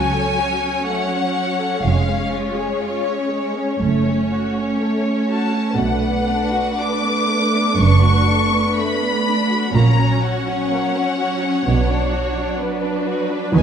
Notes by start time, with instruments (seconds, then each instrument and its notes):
Already playing: double bass section C#2, cello section C#2, viola section F#3 C#4, violin section F#4 C#5 G#5
0.14 violin section A4
0.39 violin section F#4
0.62 violin section C#4
0.86 violin section A3 F#5
1.09 violin section C#4
1.35 violin section F#4
1.60 violin section A4
1.81 double bass section F1, cello section F2, viola section G#3, violin section G#3 F5
2.07 violin section C#4
2.32 violin section F4 C#5
2.56 violin section G#4
2.81 violin section F4
3.05 violin section C#4
3.31 violin section G#3
3.57 violin section C#4
3.81 double bass section F#1, cello section F#2, violin section A3 C#5, viola section A3 C#4
4.07 violin section C#4
4.31 violin section F#4
4.56 violin section C#4
4.80 violin section A3
5.05 violin section C#4
5.29 violin section F#4 A5
5.54 violin section C#4
5.78 double bass section B1, cello section B2, violin section A3 B4 F#5, viola section D4
6.03 violin section B3
6.29 violin section D4
6.53 violin section F#4
6.79 violin section D4 D6
7.06 violin section B3
7.31 violin section A3
7.54 violin section B3
7.78 double bass section F#1, cello section F#2, violin section D4 C#6
8.03 violin section F#4
8.27 violin section D4
8.51 violin section B3
8.76 violin section A3 B5
9.01 violin section B3
9.24 violin section D4
9.49 violin section F#4
9.73 double bass section A#1, cello section A#2, viola section F#3 C#4, violin section A#3 C#5 A#5
9.98 violin section C#4
10.23 violin section F#4 F#5
10.48 violin section C#4
10.71 violin section A#3
10.94 violin section C#4
11.19 violin section F#4
11.42 violin section C#4
11.66 double bass section B1, cello section B2, violin section B3, viola section D4
11.90 violin section D4
12.13 violin section F#4
12.36 violin section D4
12.60 violin section B3 B4
12.82 violin section D4
13.07 violin section F#4
13.31 violin section D4
13.54 double bass section D#2, cello section D#3, violin section B3 G#5, viola section D#4